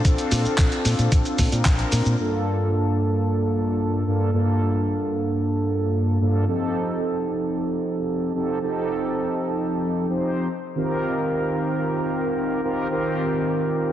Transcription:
0.05 A#1 C4 D4 F4 A4, kick, closed hi-hat, shaker
0.18 closed hi-hat, shaker
0.32 A#2, open hi-hat, shaker
0.45 muted fingered electric bass stroke, closed hi-hat, shaker
0.58 A#1, kick, clap, closed hi-hat, shaker
0.72 closed hi-hat, shaker
0.85 A#2, open hi-hat, shaker
0.99 A#2, closed hi-hat, shaker
1.12 A#1, kick, closed hi-hat, shaker
1.25 closed hi-hat, shaker
1.39 A#2, kick, open hi-hat, shaker
1.51 A#2 C4 D4 F4 A#4, closed hi-hat, shaker
1.65 A#1, kick, clap, closed hi-hat, shaker
1.79 closed hi-hat
1.92 A#2, open hi-hat, shaker
2.06 A#2, shaker
2.18 G2 A#3 D4 F4 A4
4.06 G2 A#3 D4 F4 A4
4.33 G2 A#3 D4 F4 A4
6.20 G2 A#3 D4 F4 A4
6.47 F3 C4 D#4 G4 A4
8.34 F3 C4 D#4 G4 A4
8.61 F3 C4 D#4 G4 A4
10.09 F3 C4 D#4 G4 C5
10.75 D#3 C4 F4 G4 A#4
12.63 D#3 C4 F4 G4 A#4
12.90 D#3 C4 F4 G4 A#4

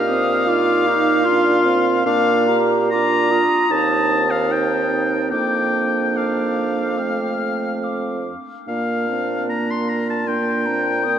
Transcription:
Already playing: A#2 G4 F5
0.08 C4 D#6
0.47 D#4 F4 D6
0.87 D#4
1.25 D4 F4 C6
1.65 C4
2.06 A#2 A#3 D4 F5 D6
2.47 G4 A#5
2.91 D4 F4 A#5 D6
3.31 F4 D#6
3.70 D#2 C4 D#4 A5
4.31 F5
4.49 D#4 G5
5.30 F2 A#3 D4 G5 D6
6.15 F5 D6
6.99 A3 C4 F6
7.84 D6
8.66 A#2 A#3 D4 F5
9.08 C4
9.49 A#3 A#5
9.71 C6
9.89 A#5
10.10 A5
10.26 A#3 D4 G5 C6
10.66 C4 A#5
11.03 A#3 F4 D#6

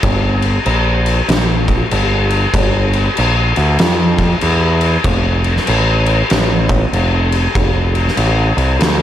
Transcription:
0.03 G1, kick, crash
0.42 crash
0.66 A#1, crash
1.06 crash
1.28 A#1, snare, crash
1.68 kick, crash
1.91 G1, crash
2.30 crash
2.53 G1, kick, crash
2.93 crash
3.17 A#1, crash
3.56 D2, crash
3.79 F2, snare, crash
4.18 kick, crash
4.41 E2, crash
4.81 crash
5.04 F1, kick, crash
5.44 crash
5.57 snare
5.67 A1, crash
6.06 crash
6.30 A1, snare, crash
6.69 kick, crash
6.93 F1, crash
7.32 crash
7.55 F1, kick, crash
7.95 crash
8.08 snare
8.17 A1, crash
8.57 C2, crash
8.79 D2, snare, crash

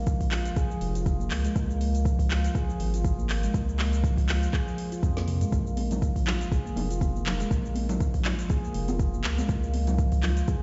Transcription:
Already playing: A#1
0.07 F3, kick, closed hi-hat, shaker
0.21 kick, open hi-hat, shaker
0.31 F4, clap, open hi-hat
0.45 closed hi-hat, shaker
0.56 G#4, kick, closed hi-hat, shaker
0.70 F3, shaker
0.81 F1, open hi-hat
0.95 F4, closed hi-hat, shaker
1.06 kick, closed hi-hat, shaker
1.20 A#3, shaker
1.31 C#2, clap, open hi-hat
1.45 G#3, closed hi-hat, shaker
1.56 C#2 A#3, kick, closed hi-hat, shaker
1.70 shaker
1.81 A#3, open hi-hat
1.95 closed hi-hat, shaker
2.05 F3, kick, closed hi-hat, shaker
2.19 kick, open hi-hat, shaker
2.31 F4, clap, open hi-hat
2.44 closed hi-hat, shaker
2.55 C#2 G#4, kick, closed hi-hat, shaker
2.69 F3, shaker
2.80 G#1, open hi-hat
2.94 F4, closed hi-hat, shaker
3.04 kick, closed hi-hat, shaker
3.19 A#3, shaker
3.29 clap, open hi-hat
3.43 G#3, closed hi-hat, shaker
3.54 C#2 A#3, kick, closed hi-hat, shaker
3.69 shaker
3.79 A#3, clap, open hi-hat
3.93 closed hi-hat, shaker
4.04 F3, kick, closed hi-hat, shaker
4.17 kick, open hi-hat, shaker
4.29 F4, clap, open hi-hat
4.43 closed hi-hat, shaker
4.53 G#4, kick, clap, closed hi-hat, shaker
4.67 F3, shaker
4.78 open hi-hat
4.92 F4, closed hi-hat, shaker
5.03 F2, kick, closed hi-hat, shaker
5.17 A#3, snare, shaker
5.28 open hi-hat, mid tom
5.41 G#3, closed hi-hat, mid tom, shaker
5.52 A#1 A#3, kick, closed hi-hat, shaker
5.67 shaker
5.77 A#3, open hi-hat, high conga
5.91 closed hi-hat, high conga, low conga, shaker
6.02 F3, kick, closed hi-hat, shaker
6.16 kick, open hi-hat, shaker
6.27 F4, clap, open hi-hat, low conga
6.41 closed hi-hat, shaker
6.51 A#1 G#4, kick, closed hi-hat, shaker
6.66 A#3, shaker
6.76 F1, open hi-hat, high conga, low conga
6.91 F4, closed hi-hat, shaker
7.01 kick, closed hi-hat, high conga, shaker
7.15 A#3, shaker
7.26 clap, open hi-hat, low conga
7.40 G#3, closed hi-hat, shaker
7.51 A#1, kick, closed hi-hat, shaker
7.65 shaker
7.75 A#3, open hi-hat, high conga
7.89 closed hi-hat, high conga, low conga, shaker
8.00 F3, kick, closed hi-hat, shaker
8.14 kick, open hi-hat, shaker
8.25 F4, clap, open hi-hat, low conga
8.39 closed hi-hat, shaker
8.50 G#4, kick, closed hi-hat, high conga, shaker
8.64 A#3, shaker
8.74 F1, open hi-hat
8.88 F4, closed hi-hat, high conga, shaker
8.99 kick, closed hi-hat, shaker
9.14 A#3, shaker
9.24 C#2, clap, open hi-hat
9.38 G#3, closed hi-hat, high conga, shaker
9.49 C#2 A#3, kick, closed hi-hat, shaker
9.63 shaker
9.74 A#3, open hi-hat, high conga
9.87 closed hi-hat, high conga, low conga, shaker
9.98 F3, kick, closed hi-hat, shaker
10.12 kick, open hi-hat, shaker
10.23 F4, clap, open hi-hat, low conga
10.37 closed hi-hat, shaker
10.48 C#2 G#4, kick, closed hi-hat, shaker

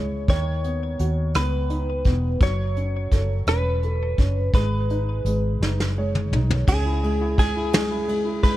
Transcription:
Already playing: C#2 C#3 G#3 E4 G#4 C#5
0.28 D#2 D#3 C#5, kick, closed hi-hat
0.64 B3, closed hi-hat
0.99 D#2 F#4, closed hi-hat
1.34 C#2 B3 B4, cross-stick, closed hi-hat
1.70 D#4, closed hi-hat
2.05 E1 B3, kick, closed hi-hat
2.40 F#1 F#3 C#5, kick, closed hi-hat
2.76 C#4, closed hi-hat
3.11 F#1 A4, kick, closed hi-hat
3.46 E1 C#4 B4, cross-stick, closed hi-hat
3.83 A4, closed hi-hat
4.18 F#1 C#4, kick, closed hi-hat
4.53 G#1 G#3 B4, kick, closed hi-hat
4.90 D#4, closed hi-hat
5.25 G#1 G#3, closed hi-hat
5.60 F#1 D#4, snare
5.80 snare
5.98 G#3 C#5
6.15 mid tom
6.32 B1 D#4, mid tom
6.51 floor tom
6.68 C#2 C#3 G#4, kick, crash
6.86 E4
7.03 G#3, ride
7.21 E4
7.38 G#3 G#4, kick, ride
7.56 E4
7.73 G#3, snare, ride
7.91 E4
8.08 G#3, ride
8.25 E4
8.43 G#3 B4, kick, ride

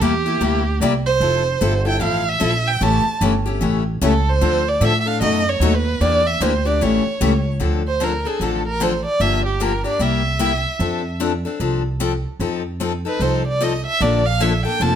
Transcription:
0.01 E2 C3 G3 A#3 E4 G4
0.26 A#3 E4 G4
0.41 D2 C3 G3 A#3 E4 G4
0.81 C2 C3 G3 A#3 E4 G4 D5
1.06 C5
1.20 F1 F3 C4 E4 A4
1.61 G1 F3 C4 E4 A4
1.85 C4 E4 A4 G5
2.00 A1 F3 C4 E4 A4 F5
2.29 E5
2.40 A#1 F3 C4 E4 A4
2.67 G5
2.81 A1 C#3 E3 A3 C#4 G4 A5
3.05 muted upright bass stroke
3.21 G1 C#3 E3 A3 C#4 G4
3.46 A3 C#4 G4
3.61 A1 C#3 E3 A3 C#4 G4
4.01 C#2 C#3 E3 A3 C#4 G4 A4
4.30 C5
4.41 D2 D3 F3 C4 D4 A4
4.68 D5
4.81 A2 D3 F3 C4 D4 A4
4.85 E5
5.00 E5
5.06 C4 D4 A4 F5
5.21 F#2 B2 F#3 A3 D#4 F#4 D#5
5.49 C#5
5.60 D#2 B2 F#3 A3 D#4 F#4
5.76 B4
6.00 E2 E3 A#3 D4 G4 D5
6.27 E5
6.40 D2 E3 A#3 D4 G4 C5
6.65 A#3 D4 G4 D5
6.81 A1 C#3 E3 A3 C#4 G4 C#5
7.05 muted upright bass stroke
7.21 C#2 C#3 E3 A3 C#4 G4
7.60 D2 D3 F3 C4 D4 A4
7.88 C5
8.00 D3 F3 C4 D4 A4 A#4
8.25 C4 D4 G#4 A4
8.40 A1 D3 F3 C4 D4 A4
8.68 A#4
8.80 D3 F3 C4 D4 A4 C5
9.05 D5
9.20 G1 D3 F3 A#3 D4 G4 E5
9.46 G4
9.60 D3 F3 A#3 D4 G4 A#4
9.84 A#3 D4 G4 D5
9.99 C2 C3 G3 A#3 E4 G4 E5
10.39 C3 G3 A#3 E4 G4
10.79 F2 F3 C4 D4 A4
11.20 F3 C4 D4 A4
11.45 C4 D4 A4
11.60 C2 F3 C4 D4 A4
12.00 F3 C4 D4 A4
12.39 F2 F3 C4 D#4 A4
12.80 F3 C4 D#4 A4
13.05 C4 D#4 A4 B4
13.20 C2 F3 C4 D#4 A4 C5
13.48 D5
13.61 F3 C4 D#4 A4 D#5
13.86 E5
14.00 A#1 D3 F3 A#3 D4 A4 D5
14.26 F5
14.40 D3 F3 A#3 D4 A4 E5
14.65 A#3 D4 A4 G5
14.80 F1 D3 F3 A#3 D4 A4 A5

